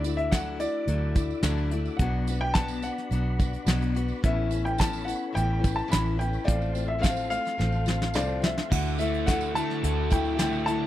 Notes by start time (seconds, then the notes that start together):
Already playing: D2 F#4 D5 E5 D6
0.04 A3 D4 E4, closed hi-hat, tambourine
0.17 E5, closed hi-hat
0.32 D3 F#3 A3 D4 E4 F#5, kick, snare, closed hi-hat, tambourine
0.60 A3 D4 E4 D5, closed hi-hat, tambourine
0.87 D2 F#3 A3 D4 E4, closed hi-hat, tambourine
1.15 A3 D4 E4, kick, closed hi-hat, tambourine
1.30 tambourine
1.43 D2 D3 F#3 A3 D4 E4, snare, closed hi-hat, tambourine
1.58 tambourine
1.71 A3 D4 E4, closed hi-hat, tambourine
1.85 tambourine
1.97 B1 B2 F#5 B5, kick, closed hi-hat
2.01 F#3 B3 D4 F#4 D5
2.27 B3 D4 F#4, closed hi-hat, tambourine
2.41 G5
2.54 B2 F#3 B3 D4 F#4 A5, kick, snare, closed hi-hat, tambourine
2.68 tambourine
2.82 B3 D4 F#4 F#5, closed hi-hat, tambourine
2.98 snare, closed hi-hat
3.11 B1 F#3 B3 D4 F#4, closed hi-hat, tambourine
3.39 B3 D4 F#4, kick, closed hi-hat, tambourine
3.53 closed hi-hat, tambourine
3.66 B1 B2 F#3 B3 D4 F#4, snare, closed hi-hat, tambourine
3.81 closed hi-hat, tambourine
3.95 B3 D4 F#4, closed hi-hat, tambourine
4.08 tambourine
4.23 A1 A2 E3 B3 C#4 E4 A4 C#5 E5 B5, kick, closed hi-hat
4.50 B3 C#4 E4, closed hi-hat, tambourine
4.65 G5, closed hi-hat
4.78 A2 E3 B3 C#4 E4 A5, kick, snare, closed hi-hat, tambourine
4.93 tambourine
5.05 B3 C#4 E4 F#5, tambourine
5.09 closed hi-hat
5.33 A1 E3 B3 C#4 E4 G5, tambourine
5.37 closed hi-hat
5.60 B3 C#4 E4
5.64 kick, closed hi-hat, tambourine
5.76 A5, tambourine
5.88 A2 E3 B3 C#4 E4 B5, tambourine
5.93 A1, snare, closed hi-hat
6.06 tambourine
6.17 B3 C#4 E4 G5, closed hi-hat, tambourine
6.33 tambourine
6.44 A1 A2 F3 A3 C4 F4 D5, tambourine
6.48 F5 C6, kick, closed hi-hat
6.62 tambourine
6.72 A3 C4 F4, tambourine
6.76 closed hi-hat
6.88 E5
6.98 A2 F3 A3 C4 F4 F5
7.03 kick, snare, closed hi-hat, tambourine
7.17 tambourine
7.29 A3 C4 F4 F5, closed hi-hat, tambourine
7.45 snare, closed hi-hat, tambourine
7.58 A1 F3 A3 C4 F4, snare, tambourine
7.72 tambourine
7.86 A3 C4 F4, snare, tambourine
8.02 snare
8.14 C2 A2 F3 A3 C4 F4 D5, snare, tambourine
8.29 tambourine
8.42 A3 C4 F4 E5, snare, tambourine
8.58 snare
8.70 D2 D3 A3 E4 F#4 E5 F#5 D6, kick, crash
8.99 A3 E4 F#4 E5, closed hi-hat, tambourine
9.14 closed hi-hat
9.26 D3 A3 E4 F#4 F#5, kick, snare, closed hi-hat, tambourine
9.41 tambourine
9.54 A3 E4 F#4 A5, closed hi-hat, tambourine
9.70 snare
9.83 D2 D3 A3 E4 F#4, closed hi-hat, tambourine
10.10 A3 E4 F#4 G5, kick, closed hi-hat, tambourine
10.25 tambourine
10.37 C#2 D3 A3 E4 F#4 G5, snare, closed hi-hat, tambourine
10.53 tambourine
10.66 D3 A3 E4 F#4 A5, closed hi-hat, tambourine